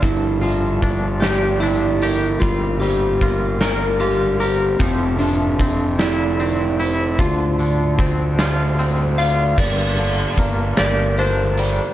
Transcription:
<<
  \new Staff \with { instrumentName = "Vibraphone" } { \time 6/8 \key g \dorian \tempo 4. = 50 r8 e''4 d''4 bes'8~ | bes'8 c''8 bes'4 bes'8 c''8 | r8 e''4 d''4 c''8~ | c''8 d''8 c''4 c''8 d''8 |
bes'8 d''4 bes'4 d''8 | }
  \new Staff \with { instrumentName = "Electric slide guitar" } { \time 6/8 \key g \dorian e'8 f'4 g'8 e'4 | f'8 g'4 bes'8 g'8 g'8 | c'8 d'4 e'4. | f'2 r8 f''8 |
d''4 r8 d''8 c''4 | }
  \new Staff \with { instrumentName = "Pedal steel guitar" } { \time 6/8 \key g \dorian <f g d' bes' a''>2. | <bes c' f'>2. | <f c' e' g' a'>2. | <d a f'>2. |
<bes d' g'>2. | }
  \new Staff \with { instrumentName = "Clean electric guitar" } { \time 6/8 \key g \dorian g,8 f8 d'8 g'8 d'8 g'8 | g8 g8 f'8 bes'8 f'8 bes'8 | f8 f8 c'8 e'8 c'8 e'8 | d8 d8 c'8 f'8 c'8 f'8 |
g,8 d8 bes8 g'8 d'8 g8 | }
  \new Staff \with { instrumentName = "Fingered electric bass" } { \clef bass \time 6/8 \key g \dorian g,,2. | g,,2. | f,,2. | d,2. |
g,,4 g,,8 g,,4. | }
  \new DrumStaff \with { instrumentName = "Drums" } \drummode { \time 6/8 <hh bd>8 hh8 <hh bd>8 <hh sn>8 hh8 hh8 | <hh bd>8 hh8 <hh bd>8 <hh sn>8 hh8 hh8 | <hh bd>8 hh8 <hh bd>8 <hh sn>8 hh8 hh8 | <hh bd>8 hh8 <hh bd>8 <hh sn>8 hh8 hh8 |
<cymc bd>8 hh8 <hh bd>8 <hh sn>8 hh8 hh8 | }
>>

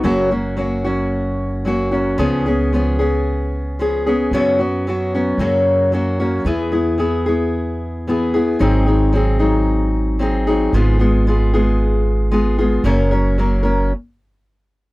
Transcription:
<<
  \new Staff \with { instrumentName = "Steel-string acoustic guitar" } { \time 4/4 \key fis \mixolydian \tempo 4 = 112 <fis, cis fis ais cis' fis'>8 <fis ais cis' fis'>8 <fis ais cis' fis'>8 <fis ais cis' fis'>4. <fis ais cis' fis'>8 <fis ais cis' fis'>8 | <cis eis b cis' gis'>8 <b cis' gis'>8 <eis b cis' gis'>8 <b cis' gis'>4. <eis b cis' gis'>8 <b cis' gis'>8 | <fis, cis fis b cis' fis'>8 <fis b cis' fis'>8 <fis b cis' fis'>8 <fis b cis' fis'>8 <fis, cis fis ais cis' fis'>4 <fis ais cis' fis'>8 <fis ais cis' fis'>8 | <e b e' gis'>8 <b e' gis'>8 <e b e' gis'>8 <b e' gis'>4. <e b e' gis'>8 <b e' gis'>8 |
<gis, dis fis bis dis' gis'>8 <fis bis dis' gis'>8 <fis bis dis' gis'>8 <fis bis dis' gis'>4. <fis bis dis' gis'>8 <fis bis dis' gis'>8 | <gis, cis gis b eis' gis'>8 <gis b eis' gis'>8 <gis b eis' gis'>8 <gis b eis' gis'>4. <gis b eis' gis'>8 <gis b eis' gis'>8 | <fis, cis fis ais cis' ais'>8 <fis ais cis' ais'>8 <fis ais cis' ais'>8 <fis ais cis' ais'>8 r2 | }
  \new Staff \with { instrumentName = "Upright bass" } { \clef bass \time 4/4 \key fis \mixolydian fis,,1 | cis,1 | fis,2 fis,2 | e,1 |
gis,,1 | gis,,1 | fis,,2 r2 | }
>>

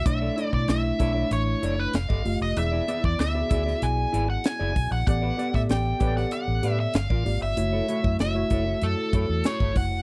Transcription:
<<
  \new Staff \with { instrumentName = "Lead electric guitar" } { \time 4/4 \key b \minor \tempo 4 = 96 e''8. d''16 e''4 cis''8. b'16 f''8. ees''16 | e''8. d''16 e''4 gis''8. fis''16 gis''8. fis''16 | fis''8. e''16 g''8. fis''16 fis''8. e''16 f''8. e''16~ | e''4 e''4 a'4 cis''8 fis''8 | }
  \new Staff \with { instrumentName = "Clean electric guitar" } { \time 4/4 \key b \minor r16 <e' a' d''>16 <e' a' d''>16 r8. <e' a' d''>16 <e' a' d''>16 r8 <e' a' d''>16 r8 <g' a' ees''>16 r8 | r16 <e' gis' d''>16 <e' gis' d''>16 r8. <e' gis' d''>16 <e' gis' d''>16 r8 <e' gis' d''>16 r8 <e' gis' d''>16 r8 | r16 <g' b' d''>16 <g' b' d''>16 r8. <g' b' d''>16 <g' b' d''>16 r8 <g' b' d''>16 r8 <f' bes' d''>16 r8 | r16 <e' a' cis''>16 <e' a' cis''>16 r8. <e' a' cis''>16 <e' a' cis''>16 r8 <e' a' cis''>16 r8 <e' a' cis''>16 r8 | }
  \new Staff \with { instrumentName = "Tine electric piano" } { \time 4/4 \key b \minor <a d' e' cis''>16 r16 <a d' e' cis''>16 r16 <a d' e' cis''>16 r16 <a d' e' cis''>4~ <a d' e' cis''>16 r8. <a f' g' ees''>16 r16 | <b e' gis' d''>16 r16 <b e' gis' d''>8 r16 <b e' fis' gis' d''>4~ <b e' fis' gis' d''>16 r4. | <b g' a' d''>16 r16 <b g' a' d''>16 r16 <b g' a' d''>16 r16 <b g' a' cis'' d''>4~ <b g' a' cis'' d''>16 r8. <bes f' g' d''>16 r16 | <a e' fis' cis''>16 r16 <a e' fis' cis''>8 r16 <a e' fis' cis''>4~ <a e' fis' cis''>16 r4. | }
  \new Staff \with { instrumentName = "Fingered electric bass" } { \clef bass \time 4/4 \key b \minor b,,8 r16 b,16 b,,8 b,,8 a,,8 fis,,8 f,,16 g,,16 fis,,16 f,,16 | e,,8 r16 e,16 d,8 d,8 b,,8 gis,,8 r16 fis,,16 b,,16 ais,,16 | a,,8 r16 a,16 a,,8 a,,8 r16 a,,16 a,8 g,,16 a,,16 gis,,16 g,,16 | fis,,8 r16 fis,16 fis,,8 fis,,8 fis,16 r16 fis,16 e,16 r16 g,,16 fis,,16 eis,,16 | }
  \new DrumStaff \with { instrumentName = "Drums" } \drummode { \time 4/4 <hh bd>8 hh16 bd16 <hh sn>8 <hh bd>8 hh8 hh8 <hh sn>16 bd16 hho8 | hh8 hh16 bd16 <hh sn>8 <hh bd>16 sn16 hh8 hh8 <hh sn>8 <hho bd>8 | <hh bd>8 hh16 <bd sn>16 <hh sn>8 <hh bd>16 sn16 hh8 hh8 <hh sn>16 bd16 hho8 | hh8 hh16 bd16 <hh sn>8 <hh bd>8 hh8 <hh bd>8 <hh sn>16 bd16 <hho bd>8 | }
>>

